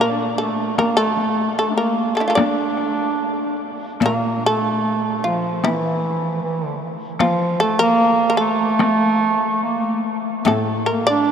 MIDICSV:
0, 0, Header, 1, 5, 480
1, 0, Start_track
1, 0, Tempo, 792602
1, 471, Time_signature, 2, 2, 24, 8
1, 1436, Tempo, 826446
1, 2876, Tempo, 790514
1, 5276, Tempo, 828729
1, 6732, End_track
2, 0, Start_track
2, 0, Title_t, "Shamisen"
2, 0, Program_c, 0, 106
2, 6, Note_on_c, 0, 70, 75
2, 133, Note_off_c, 0, 70, 0
2, 133, Note_on_c, 0, 69, 75
2, 222, Note_off_c, 0, 69, 0
2, 231, Note_on_c, 0, 69, 66
2, 453, Note_off_c, 0, 69, 0
2, 476, Note_on_c, 0, 70, 78
2, 583, Note_off_c, 0, 70, 0
2, 586, Note_on_c, 0, 69, 78
2, 922, Note_off_c, 0, 69, 0
2, 962, Note_on_c, 0, 69, 72
2, 1067, Note_off_c, 0, 69, 0
2, 1075, Note_on_c, 0, 70, 64
2, 1299, Note_off_c, 0, 70, 0
2, 1302, Note_on_c, 0, 58, 33
2, 1313, Note_on_c, 0, 69, 64
2, 1332, Note_off_c, 0, 58, 0
2, 1335, Note_on_c, 0, 62, 38
2, 1339, Note_on_c, 0, 64, 43
2, 1376, Note_off_c, 0, 64, 0
2, 1379, Note_on_c, 0, 65, 48
2, 1387, Note_off_c, 0, 69, 0
2, 1392, Note_on_c, 0, 70, 54
2, 1396, Note_on_c, 0, 69, 39
2, 1417, Note_off_c, 0, 62, 0
2, 1423, Note_off_c, 0, 70, 0
2, 1425, Note_on_c, 0, 74, 80
2, 1459, Note_off_c, 0, 65, 0
2, 1477, Note_off_c, 0, 69, 0
2, 2127, Note_off_c, 0, 74, 0
2, 2415, Note_on_c, 0, 70, 89
2, 2631, Note_off_c, 0, 70, 0
2, 2651, Note_on_c, 0, 69, 85
2, 3101, Note_off_c, 0, 69, 0
2, 3113, Note_on_c, 0, 65, 63
2, 3339, Note_off_c, 0, 65, 0
2, 3358, Note_on_c, 0, 64, 75
2, 4045, Note_off_c, 0, 64, 0
2, 4306, Note_on_c, 0, 65, 79
2, 4529, Note_off_c, 0, 65, 0
2, 4545, Note_on_c, 0, 69, 89
2, 4658, Note_off_c, 0, 69, 0
2, 4662, Note_on_c, 0, 70, 103
2, 4962, Note_off_c, 0, 70, 0
2, 4969, Note_on_c, 0, 70, 68
2, 5012, Note_off_c, 0, 70, 0
2, 5015, Note_on_c, 0, 69, 80
2, 5969, Note_off_c, 0, 69, 0
2, 6245, Note_on_c, 0, 69, 71
2, 6396, Note_off_c, 0, 69, 0
2, 6396, Note_on_c, 0, 65, 71
2, 6465, Note_off_c, 0, 65, 0
2, 6469, Note_on_c, 0, 70, 74
2, 6584, Note_off_c, 0, 70, 0
2, 6587, Note_on_c, 0, 74, 93
2, 6732, Note_off_c, 0, 74, 0
2, 6732, End_track
3, 0, Start_track
3, 0, Title_t, "Bass clarinet"
3, 0, Program_c, 1, 71
3, 0, Note_on_c, 1, 58, 63
3, 208, Note_off_c, 1, 58, 0
3, 237, Note_on_c, 1, 57, 57
3, 456, Note_off_c, 1, 57, 0
3, 465, Note_on_c, 1, 58, 64
3, 579, Note_off_c, 1, 58, 0
3, 588, Note_on_c, 1, 57, 71
3, 923, Note_off_c, 1, 57, 0
3, 953, Note_on_c, 1, 57, 63
3, 1025, Note_off_c, 1, 57, 0
3, 1030, Note_on_c, 1, 62, 46
3, 1056, Note_on_c, 1, 58, 67
3, 1066, Note_off_c, 1, 62, 0
3, 1301, Note_off_c, 1, 58, 0
3, 1305, Note_on_c, 1, 57, 53
3, 1423, Note_off_c, 1, 57, 0
3, 1426, Note_on_c, 1, 62, 69
3, 2127, Note_off_c, 1, 62, 0
3, 2400, Note_on_c, 1, 58, 69
3, 2624, Note_off_c, 1, 58, 0
3, 2641, Note_on_c, 1, 57, 73
3, 3096, Note_off_c, 1, 57, 0
3, 3123, Note_on_c, 1, 53, 57
3, 3344, Note_off_c, 1, 53, 0
3, 3363, Note_on_c, 1, 52, 67
3, 3811, Note_off_c, 1, 52, 0
3, 3831, Note_on_c, 1, 52, 58
3, 3977, Note_off_c, 1, 52, 0
3, 3977, Note_on_c, 1, 50, 58
3, 4052, Note_off_c, 1, 50, 0
3, 4304, Note_on_c, 1, 53, 75
3, 4529, Note_off_c, 1, 53, 0
3, 4556, Note_on_c, 1, 57, 80
3, 4663, Note_off_c, 1, 57, 0
3, 4675, Note_on_c, 1, 58, 98
3, 5009, Note_off_c, 1, 58, 0
3, 5030, Note_on_c, 1, 57, 90
3, 5734, Note_off_c, 1, 57, 0
3, 5758, Note_on_c, 1, 58, 61
3, 5983, Note_off_c, 1, 58, 0
3, 6211, Note_on_c, 1, 58, 44
3, 6241, Note_on_c, 1, 57, 64
3, 6250, Note_off_c, 1, 58, 0
3, 6479, Note_off_c, 1, 57, 0
3, 6498, Note_on_c, 1, 58, 62
3, 6599, Note_off_c, 1, 58, 0
3, 6604, Note_on_c, 1, 62, 85
3, 6732, Note_off_c, 1, 62, 0
3, 6732, End_track
4, 0, Start_track
4, 0, Title_t, "Koto"
4, 0, Program_c, 2, 107
4, 0, Note_on_c, 2, 46, 53
4, 941, Note_off_c, 2, 46, 0
4, 2392, Note_on_c, 2, 46, 47
4, 3830, Note_off_c, 2, 46, 0
4, 6230, Note_on_c, 2, 45, 50
4, 6732, Note_off_c, 2, 45, 0
4, 6732, End_track
5, 0, Start_track
5, 0, Title_t, "Taiko and cinematic ensemble drums"
5, 474, Note_on_c, 9, 37, 50
5, 474, Note_on_c, 9, 48, 51
5, 535, Note_off_c, 9, 37, 0
5, 535, Note_off_c, 9, 48, 0
5, 711, Note_on_c, 9, 48, 31
5, 771, Note_off_c, 9, 48, 0
5, 1438, Note_on_c, 9, 37, 60
5, 1438, Note_on_c, 9, 48, 61
5, 1496, Note_off_c, 9, 37, 0
5, 1496, Note_off_c, 9, 48, 0
5, 1669, Note_on_c, 9, 37, 29
5, 1727, Note_off_c, 9, 37, 0
5, 2388, Note_on_c, 9, 37, 49
5, 2388, Note_on_c, 9, 48, 51
5, 2446, Note_off_c, 9, 37, 0
5, 2446, Note_off_c, 9, 48, 0
5, 3353, Note_on_c, 9, 37, 55
5, 3353, Note_on_c, 9, 48, 59
5, 3414, Note_off_c, 9, 37, 0
5, 3414, Note_off_c, 9, 48, 0
5, 4302, Note_on_c, 9, 37, 61
5, 4302, Note_on_c, 9, 48, 60
5, 4363, Note_off_c, 9, 37, 0
5, 4363, Note_off_c, 9, 48, 0
5, 5270, Note_on_c, 9, 37, 59
5, 5270, Note_on_c, 9, 48, 58
5, 5328, Note_off_c, 9, 37, 0
5, 5328, Note_off_c, 9, 48, 0
5, 6239, Note_on_c, 9, 37, 61
5, 6239, Note_on_c, 9, 48, 55
5, 6296, Note_off_c, 9, 37, 0
5, 6296, Note_off_c, 9, 48, 0
5, 6732, End_track
0, 0, End_of_file